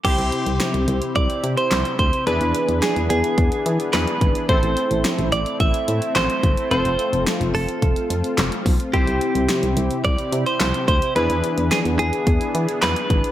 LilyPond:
<<
  \new Staff \with { instrumentName = "Clean electric guitar" } { \time 4/4 \key c \major \tempo 4 = 108 g'2 d''8. c''8. c''8 | b'4 gis'8 gis'4. b'4 | c''4. d''8 e''4 c''4 | c''4 r8 a'2 r8 |
g'2 d''8. c''8. c''8 | b'4 gis'8 gis'4. b'4 | }
  \new Staff \with { instrumentName = "Synth keys" } { \time 4/4 \key c \major <c' e' g' c''>1 | <d' e' gis' b'>2. <d' e' gis' b'>4 | <c' e' a' c''>1 | <c' f' a' c''>1 |
<c' e' g' c''>1 | <d' e' gis' b'>1 | }
  \new Staff \with { instrumentName = "Analog synth pad" } { \time 4/4 \key c \major << { <c g'>1 | <e gis'>1 | e'1 | f'1 |
<c g'>1 | <e gis'>1 | } \\ { <c' e'>1 | <b d'>1 | <a c'>1~ | <a c'>1 |
e'1 | <b d'>1 | } >> }
  \new Staff \with { instrumentName = "FM bass" } { \clef bass \time 4/4 \key c \major c,16 c,16 r16 c,16 r16 c,16 c,16 r16 c,16 r16 c16 r16 c,16 r16 d,16 r16 | e,16 e,16 r16 e,16 r16 e,16 e,16 r16 e,16 r16 e16 r16 e,16 r16 gis,,16 r16 | a,,16 a,,16 r16 a,,16 r16 a,,16 a,,16 r16 a,,16 r16 a,16 r16 a,,16 r16 g,,16 r16 | f,,16 f,,16 r16 f,,16 r16 f,,16 f,,16 r16 f,,16 r16 f,16 r16 f,,16 r16 b,,16 r16 |
c,16 c,16 r16 c,16 r16 c,16 c,16 r16 c,16 r16 c16 r16 c,16 r16 d,16 r16 | e,16 e,16 r16 e,16 r16 e,16 e,16 r16 e,16 r16 e16 r16 e,16 r16 gis,,16 r16 | }
  \new DrumStaff \with { instrumentName = "Drums" } \drummode { \time 4/4 <cymc hh bd>16 hh16 hh16 hh16 <hh sn>16 hh16 hh16 hh16 <hh bd>16 hh16 hh16 hh16 <hc hh sn>16 hh16 <hh bd>16 hh16 | hh16 hh16 hh16 hh16 <hh sn>16 hh16 hh16 hh16 <hh bd>16 hh16 hh16 hh16 <hc hh sn>16 hh16 <hh bd>16 hh16 | <hh bd>16 hh16 hh16 hh16 <hh sn>16 hh16 hh16 hh16 <hh bd>16 hh16 hh16 hh16 <hc hh sn>16 hh16 <hh bd>16 hh16 | hh16 hh16 hh16 hh16 <hh sn>16 hh16 hho16 hh16 <hh bd>16 hh16 hh16 hh16 <hc hh sn>16 hh16 <hho bd>16 hh16 |
<hh bd>16 hh16 hh16 hh16 <hh sn>16 hh16 hh16 hh16 <hh bd>16 hh16 hh16 hh16 <hc hh sn>16 hh16 <hh bd>16 hh16 | hh16 hh16 hh16 hh16 <hh sn>16 hh16 hh16 hh16 <hh bd>16 hh16 hh16 hh16 <hc hh sn>16 hh16 <hh bd>16 hh16 | }
>>